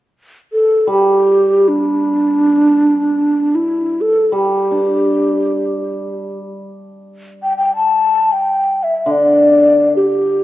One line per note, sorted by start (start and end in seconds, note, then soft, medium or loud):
0.53 0.88 A4 medium
0.87 3.09 G3 soft
0.87 1.70 G4 medium
1.68 3.57 D4 medium
3.55 4.03 E4 medium
4.01 4.34 A4 medium
4.32 6.58 G3 soft
4.32 6.40 G4 medium
4.71 6.22 D4 soft
7.43 7.57 G5 medium
7.57 7.74 G5 medium
7.76 8.34 A5 medium
8.32 8.85 G5 medium
8.83 9.13 E5 medium
9.06 10.44 D3 soft
9.11 9.96 D5 medium
9.96 10.44 G4 medium